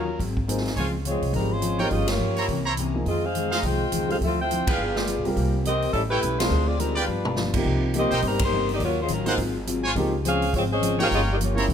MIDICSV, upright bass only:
0, 0, Header, 1, 3, 480
1, 0, Start_track
1, 0, Key_signature, -3, "minor"
1, 0, Tempo, 287081
1, 1277, Time_signature, 4, 2, 24, 8
1, 19624, End_track
2, 0, Start_track
2, 0, Title_t, "Upright bass"
2, 0, Program_c, 0, 32
2, 0, Note_on_c, 0, 39, 84
2, 277, Note_off_c, 0, 39, 0
2, 325, Note_on_c, 0, 32, 88
2, 1233, Note_off_c, 0, 32, 0
2, 1277, Note_on_c, 0, 37, 88
2, 1991, Note_off_c, 0, 37, 0
2, 2037, Note_on_c, 0, 36, 76
2, 2214, Note_off_c, 0, 36, 0
2, 2224, Note_on_c, 0, 32, 82
2, 3141, Note_off_c, 0, 32, 0
2, 3190, Note_on_c, 0, 31, 81
2, 3638, Note_off_c, 0, 31, 0
2, 3670, Note_on_c, 0, 43, 73
2, 4118, Note_off_c, 0, 43, 0
2, 4153, Note_on_c, 0, 36, 73
2, 5065, Note_off_c, 0, 36, 0
2, 5114, Note_on_c, 0, 41, 72
2, 6025, Note_off_c, 0, 41, 0
2, 6069, Note_on_c, 0, 36, 71
2, 6517, Note_off_c, 0, 36, 0
2, 6551, Note_on_c, 0, 37, 64
2, 6998, Note_off_c, 0, 37, 0
2, 7039, Note_on_c, 0, 38, 80
2, 7751, Note_off_c, 0, 38, 0
2, 7993, Note_on_c, 0, 31, 78
2, 8588, Note_off_c, 0, 31, 0
2, 8640, Note_on_c, 0, 35, 61
2, 8786, Note_off_c, 0, 35, 0
2, 8803, Note_on_c, 0, 37, 66
2, 8948, Note_off_c, 0, 37, 0
2, 8969, Note_on_c, 0, 36, 86
2, 9874, Note_off_c, 0, 36, 0
2, 9920, Note_on_c, 0, 33, 91
2, 10365, Note_off_c, 0, 33, 0
2, 10412, Note_on_c, 0, 35, 73
2, 10851, Note_off_c, 0, 35, 0
2, 10873, Note_on_c, 0, 38, 85
2, 11787, Note_off_c, 0, 38, 0
2, 11840, Note_on_c, 0, 31, 85
2, 12751, Note_off_c, 0, 31, 0
2, 12800, Note_on_c, 0, 36, 88
2, 13513, Note_off_c, 0, 36, 0
2, 13561, Note_on_c, 0, 35, 77
2, 13741, Note_off_c, 0, 35, 0
2, 13756, Note_on_c, 0, 31, 91
2, 14669, Note_off_c, 0, 31, 0
2, 14708, Note_on_c, 0, 39, 81
2, 15159, Note_off_c, 0, 39, 0
2, 15194, Note_on_c, 0, 33, 77
2, 15642, Note_off_c, 0, 33, 0
2, 15680, Note_on_c, 0, 32, 88
2, 16590, Note_off_c, 0, 32, 0
2, 16645, Note_on_c, 0, 37, 95
2, 17553, Note_off_c, 0, 37, 0
2, 17616, Note_on_c, 0, 32, 85
2, 18519, Note_off_c, 0, 32, 0
2, 18577, Note_on_c, 0, 31, 89
2, 19479, Note_off_c, 0, 31, 0
2, 19537, Note_on_c, 0, 36, 88
2, 19624, Note_off_c, 0, 36, 0
2, 19624, End_track
3, 0, Start_track
3, 0, Title_t, "Muted upright bass strokes"
3, 7808, Note_on_c, 9, 29, 45
3, 7975, Note_off_c, 9, 29, 0
3, 19624, End_track
0, 0, End_of_file